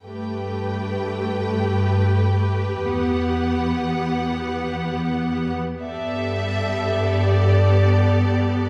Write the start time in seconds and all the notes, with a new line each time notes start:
0.04 G2 A3 G4 B4 G5
2.88 E2 B3 F#5
5.82 G2 B3 G4 A4 D5 E5
7.25 D5